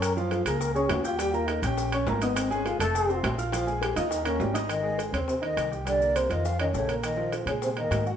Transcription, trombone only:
0.02 0.16 A#4 loud
0.16 0.32 C#4 medium
0.31 0.45 F4 medium
0.45 0.62 G#4 medium
0.60 0.74 A#4 loud
0.75 0.92 G#4 loud
0.91 1.04 F#4 medium
1.05 1.21 F4 loud
1.19 1.35 G4 loud
1.34 1.50 F4 loud
1.49 1.63 D#4 medium
1.64 2.04 C#4 medium
2.22 2.38 B3 loud
2.36 2.52 C4 medium
2.51 2.68 C#4 loud
2.66 2.80 F4 medium
2.80 3.21 A4 loud
3.82 3.95 G4 medium
3.96 4.12 F4 loud
4.11 4.25 D#4 medium
4.25 4.60 C#4 loud
4.69 4.97 D#3 medium
5.13 5.20 C#3 medium
5.28 5.35 C3 medium
5.43 5.70 D#3 medium
5.87 6.18 D3 medium
6.16 6.32 C3 medium
6.31 6.47 D#3 medium
6.45 6.60 F3 medium
6.60 6.67 D#3 medium
6.74 6.95 C#3 medium
7.04 7.31 D#3 medium
7.47 7.54 C#3 medium
7.63 7.70 C3 medium
7.78 8.05 D#3 medium

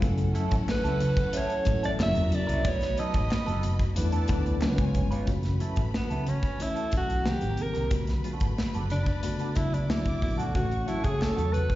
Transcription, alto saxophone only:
0.71 1.38 B4 medium
1.37 1.84 C#5 loud
1.86 1.92 D5 medium
2.03 2.36 E5 loud
2.35 2.69 D5 medium
2.68 3.01 C#5 loud
2.99 3.97 D#5 medium
5.96 6.31 B3 medium
6.29 6.64 C#4 medium
6.63 6.94 E4 medium
6.97 7.31 F#4 loud
7.30 7.64 G4 loud
7.62 7.93 A#4 medium
8.91 9.58 D4 medium
9.56 9.75 E4 medium
9.74 9.92 D4 medium
9.91 10.22 E4 medium
10.23 10.40 E4 medium
10.38 10.55 F#4 medium
10.55 10.90 F#4 medium
10.88 11.06 E4 medium
11.05 11.23 G#4 medium
11.22 11.55 A4 medium
11.53 11.75 B4 loud

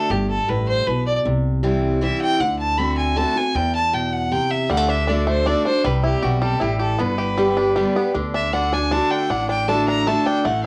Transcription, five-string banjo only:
4.70 4.77 G3 medium
4.77 5.08 A3 medium
4.89 5.06 D4 medium
5.07 5.45 D4 medium
5.27 5.81 A3 medium
5.46 5.64 D4 medium
5.65 5.84 D4 medium
5.85 6.38 G3 medium
6.04 6.57 E4 medium
6.22 6.77 G4 medium
6.42 6.96 G3 medium
6.60 6.99 E4 medium
6.80 6.99 G4 medium
6.99 7.53 B3 medium
7.18 7.72 G4 medium
7.38 7.75 G3 medium
7.57 8.14 D4 medium
7.76 8.14 G3 medium
7.96 8.14 B3 medium
8.14 8.33 D4 medium
8.34 8.52 D4 medium
8.53 8.71 D4 medium
8.73 8.90 D4 medium
8.91 9.29 D4 medium
9.11 9.65 D3 medium
9.30 9.48 D4 medium
9.49 9.68 D4 medium
9.69 9.87 D4 medium
9.88 10.25 D4 medium
10.07 10.44 A3 medium
10.26 10.45 D4 medium
10.45 10.66 A3 medium

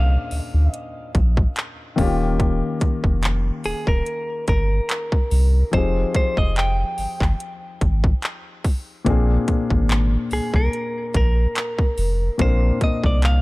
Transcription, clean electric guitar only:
0.00 0.72 F5 loud
0.72 1.11 D#5 loud
3.66 3.88 G#4 medium
3.88 4.44 A#4 medium
4.49 5.74 A#4 medium
5.74 6.15 C5 loud
6.16 6.36 C5 medium
6.38 6.57 D#5 medium
6.58 7.78 G5 medium
10.33 10.55 G#4 medium
10.56 11.15 A#4 medium
11.16 12.41 A#4 medium
12.41 12.79 C5 loud
12.84 13.05 D#5 medium
13.06 13.24 D5 medium
13.25 13.42 F5 medium

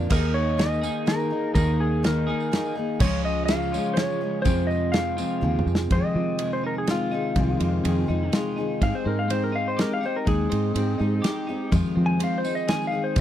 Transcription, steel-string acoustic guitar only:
0.00 0.10 D4 medium
0.00 0.11 F4 soft
0.10 0.57 D#3 medium
0.10 0.57 A#3 medium
0.10 0.58 D#4 medium
0.10 0.59 G#4 medium
0.58 1.05 D#3 medium
0.58 1.06 A#3 medium
0.58 1.07 D#4 medium
0.58 1.09 G#4 medium
1.06 1.31 D#3 medium
1.06 1.31 A#3 medium
1.06 1.31 D#4 medium
1.06 1.29 G#4 medium
1.30 1.55 A#3 soft
1.30 1.56 D#4 soft
1.30 1.55 G#4 medium
1.56 2.02 D#3 medium
1.56 2.03 A#3 medium
1.56 2.04 D#4 medium
1.56 2.06 G#4 medium
2.03 2.50 D#3 medium
2.03 2.51 A#3 medium
2.03 2.52 D#4 medium
2.03 2.54 G#4 medium
2.52 2.76 D#3 medium
2.52 2.76 A#3 medium
2.52 2.76 D#4 medium
2.52 2.74 G#4 medium
2.75 3.01 A#3 soft
2.75 3.01 D#4 soft
2.75 3.00 G#4 medium
3.01 3.49 C#3 medium
3.01 3.48 F3 medium
3.01 3.49 G#3 medium
3.01 3.50 C#4 medium
3.01 3.51 G#4 loud
3.49 3.73 F3 medium
3.49 3.73 G#3 medium
3.49 3.73 C#4 medium
3.49 3.72 G#4 medium
3.73 3.96 G#3 soft
3.73 3.97 C#4 soft
3.73 3.97 G#4 soft
3.96 4.21 F3 medium
3.96 4.21 G#3 medium
3.96 4.20 C#4 medium
3.96 4.19 G#4 medium
4.21 4.45 G#3 soft
4.21 4.45 C#4 soft
4.21 4.45 G#4 soft
4.45 4.94 F2 medium
4.45 4.94 C3 medium
4.45 4.92 F3 medium
4.45 4.92 G#3 medium
4.45 4.93 C4 medium
4.45 4.94 G#4 medium
4.93 5.40 F3 medium
4.93 5.41 G#3 medium
4.93 5.42 C4 medium
4.93 5.43 G#4 medium
5.41 5.90 F3 medium
5.41 5.91 G#3 medium
5.41 5.91 C4 medium
5.41 5.91 G#4 medium
5.91 6.39 F2 medium
5.91 6.39 C3 medium
5.91 6.38 D#3 medium
5.91 6.40 G#3 medium
5.91 6.40 C4 medium
5.91 6.41 G#4 medium
6.39 6.87 D#3 medium
6.39 6.89 G#3 medium
6.39 6.90 C4 medium
6.39 6.91 G#4 medium
6.88 7.12 D#3 medium
6.88 7.13 G#3 medium
6.88 7.12 C4 medium
6.88 7.11 G#4 medium
7.12 7.36 D#3 soft
7.12 7.36 G#3 soft
7.12 7.37 C4 soft
7.12 7.36 G#4 soft
7.37 7.85 F2 medium
7.37 7.85 C3 medium
7.37 7.84 D#3 medium
7.37 7.85 G#3 medium
7.37 7.86 C4 medium
7.37 7.87 G#4 medium
7.85 8.09 D#3 medium
7.85 8.08 G#3 medium
7.85 8.08 C4 medium
7.85 8.06 G#4 medium
8.07 8.31 D#3 soft
8.07 8.32 G#3 soft
8.07 8.33 C4 medium
8.07 8.32 G#4 medium
8.32 8.57 D#3 medium
8.32 8.58 G#3 medium
8.32 8.57 C4 medium
8.32 8.56 G#4 medium
8.57 8.82 D#3 soft
8.57 8.81 G#3 soft
8.57 8.81 C4 medium
8.57 8.82 G#4 medium
8.82 9.29 G#3 medium
8.82 9.30 C4 medium
8.82 9.31 D#4 medium
8.82 9.32 G4 medium
9.29 9.78 G#3 medium
9.29 9.79 C4 medium
9.29 9.80 D#4 medium
9.29 9.80 G4 medium
9.78 10.03 G#3 medium
9.78 10.03 C4 medium
9.78 10.02 D#4 medium
9.78 10.02 G4 medium
10.03 10.26 C4 soft
10.03 10.27 D#4 soft
10.03 10.27 G4 soft
10.27 10.76 G#3 medium
10.27 10.77 C4 medium
10.27 10.78 D#4 medium
10.76 11.00 G#3 soft
10.76 11.00 C4 medium
10.76 11.00 D#4 medium
10.76 10.98 G4 medium
10.99 11.23 C4 soft
10.99 11.23 D#4 soft
10.99 11.24 G4 medium
11.23 11.48 G#3 medium
11.23 11.48 C4 medium
11.23 11.49 D#4 medium
11.23 11.48 G4 medium
11.49 11.72 C4 soft
11.49 11.73 D#4 soft
11.49 11.73 G4 medium
11.72 12.20 F2 medium
11.72 12.21 C3 medium
11.72 12.18 D#3 medium
11.72 12.20 G#3 medium
11.72 12.21 C4 medium
11.72 12.21 G#4 loud
12.19 12.44 D#3 medium
12.19 12.44 G#3 medium
12.19 12.44 C4 medium
12.19 12.43 G#4 medium
12.44 12.67 D#3 soft
12.44 12.68 G#3 soft
12.44 12.68 C4 soft
12.44 12.69 G#4 medium
12.68 12.93 D#3 medium
12.68 12.93 G#3 medium
12.68 12.93 C4 medium
12.68 12.91 G#4 medium
12.92 13.16 D#3 soft
12.92 13.17 G#3 soft
12.92 13.17 C4 soft
12.92 13.17 G#4 soft
13.17 13.21 F2 medium
13.17 13.21 C3 medium
13.17 13.21 D#3 medium

